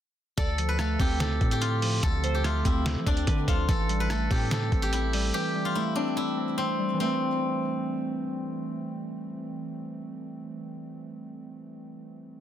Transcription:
0.38 808-style bass D2, synth keys D3, guzheng A4, synth pluck D5, kick, closed hi-hat
0.58 synth keys F3, closed hi-hat
0.69 guzheng B4
0.79 synth keys A3, guzheng A4, synth pluck F5, cross-stick, closed hi-hat
1.00 808-style bass D2, synth keys C4, guzheng G4, kick, open hi-hat
1.20 guzheng A4, snare, closed hi-hat
1.41 808-style bass A2, synth keys C4, kick, closed hi-hat
1.51 guzheng G4, closed hi-hat
1.61 guzheng F4, closed hi-hat
1.82 synth keys F3, open hi-hat
2.03 808-style bass D2, synth keys D3, guzheng A4, kick, closed hi-hat
2.24 synth keys F3, synth pluck C5, closed hi-hat
2.35 guzheng G4
2.44 synth keys A3, guzheng F4, cross-stick, closed hi-hat
2.65 808-style bass D2, synth keys C4, guzheng E4, kick, closed hi-hat
2.86 snare, closed hi-hat
2.96 808-style bass F3
3.06 808-style bass D2, synth keys C4, guzheng D4, synth pluck D5, kick, closed hi-hat
3.17 closed hi-hat
3.27 808-style bass D3, synth pluck B4, kick, closed hi-hat
3.48 808-style bass D2, synth keys F3, guzheng F4, synth pluck A4, kick, closed hi-hat
3.68 808-style bass A1, synth keys E3, guzheng A4, kick, closed hi-hat
3.89 synth keys G3, closed hi-hat
4.00 guzheng B4
4.10 synth keys A3, guzheng A4, cross-stick, closed hi-hat
4.31 808-style bass A2, synth keys C4, guzheng G4, kick, open hi-hat
4.51 guzheng A4, snare, closed hi-hat
4.72 808-style bass A1, synth keys C4, kick, closed hi-hat
4.82 guzheng G4, closed hi-hat
4.93 guzheng E4, closed hi-hat
5.13 synth keys G3, open hi-hat
5.34 synth keys E3, guzheng G4
5.55 synth keys G3
5.65 guzheng F4
5.75 synth keys A3, guzheng E4
5.96 synth keys C4, guzheng D4
6.17 guzheng E4
6.37 synth keys C4
6.58 guzheng C4
6.79 synth keys G3
6.94 synth keys E3 G3
7.00 synth keys A3, guzheng C4
7.06 synth keys C4

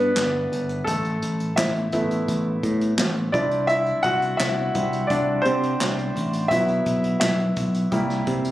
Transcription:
Already playing: picked electric bass G2, grand piano A3 B3 D4 E4 F#4 B4 D5 E5 F#5
0.16 picked electric bass G1, snare, clap, closed hi-hat
0.52 picked electric bass G1, closed hi-hat
0.69 closed hi-hat
0.84 picked electric bass A1, grand piano A3 A4, kick, closed hi-hat
1.05 closed hi-hat
1.22 picked electric bass A1, closed hi-hat
1.40 closed hi-hat
1.56 picked electric bass A1, grand piano E4 E5, snare, clap, closed hi-hat
1.76 closed hi-hat
1.92 picked electric bass A1, grand piano A3 B3 E4, kick, closed hi-hat
2.11 closed hi-hat
2.28 picked electric bass A1, kick, closed hi-hat
2.63 picked electric bass A2, kick, closed hi-hat
2.81 closed hi-hat
2.98 picked electric bass A1, snare, clap, closed hi-hat
3.16 closed hi-hat
3.32 picked electric bass C2, grand piano G3 C4 D4 E4 D5, kick, closed hi-hat
3.51 closed hi-hat
3.67 grand piano E4 E5, closed hi-hat
3.86 closed hi-hat
4.03 picked electric bass C2, grand piano F#4 F#5, kick, closed hi-hat
4.22 closed hi-hat
4.37 picked electric bass C2, grand piano E4 E5, snare, clap, closed hi-hat
4.75 picked electric bass C2, grand piano G3 C4 E4, kick, closed hi-hat
4.93 closed hi-hat
5.07 picked electric bass C2, grand piano D4 D5, kick, closed hi-hat
5.42 picked electric bass C3, grand piano C5, closed hi-hat
5.46 grand piano C4
5.63 closed hi-hat
5.81 picked electric bass C2, snare, clap, closed hi-hat
5.99 closed hi-hat
6.16 picked electric bass A1, closed hi-hat
6.33 closed hi-hat
6.48 picked electric bass B1, grand piano F#3 B3 E4 E5, kick, closed hi-hat
6.68 closed hi-hat
6.86 picked electric bass B1, kick, closed hi-hat
7.04 closed hi-hat
7.20 picked electric bass B1, grand piano E4 E5, snare, clap, closed hi-hat
7.40 closed hi-hat
7.56 picked electric bass B1, kick, closed hi-hat
7.74 closed hi-hat
7.92 picked electric bass C2, grand piano G3 A#3 E4, kick, closed hi-hat
8.10 snare, closed hi-hat
8.27 picked electric bass C3, kick, closed hi-hat
8.45 closed hi-hat

